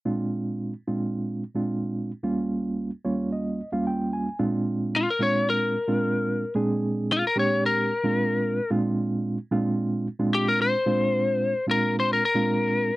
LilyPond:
<<
  \new Staff \with { instrumentName = "Lead electric guitar" } { \time 4/4 \key bes \mixolydian \tempo 4 = 111 r1 | r1 | r4 f'16 bes'16 des''8 bes'2 | r4 f'16 bes'16 des''8 bes'2 |
r2. g'16 bes'16 c''8~ | c''4. bes'8 c''16 bes'16 bes'4. | }
  \new Staff \with { instrumentName = "Reed electric piano" } { \time 4/4 \key bes \mixolydian << { r1 | r4. des''8 ees''8. f''16 g''8 aes''8 | r1 | r1 |
r1 | r1 | } \\ { <bes, aes c' d' f'>4~ <bes, aes c' d' f'>16 r16 <bes, aes c' d' f'>4 r16 <bes, aes c' d' f'>4 r16 | <ees, g bes des' f'>4~ <ees, g bes des' f'>16 r16 <ees, g bes des' f'>4 r16 <ees, g bes des' f'>4 r16 | <bes, aes c' d' f'>4~ <bes, aes c' d' f'>16 r16 <bes, aes c' d' f'>4 r16 <bes, aes c' d' f'>4 r16 | <bes, aes c' d' aes'>4~ <bes, aes c' d' aes'>16 r16 <bes, aes c' d' g'>4 r16 <bes, aes c' d' f'>4 r16 |
<bes, aes c' d' f'>4~ <bes, aes c' d' f'>16 r16 <bes, aes c' d' f'>4 r16 <bes, aes c' d' f'>4 r16 | <bes, aes c' d' f'>4~ <bes, aes c' d' f'>16 r16 <bes, aes c' d' f'>4 r16 <bes, aes c' d' f'>4 r16 | } >> }
>>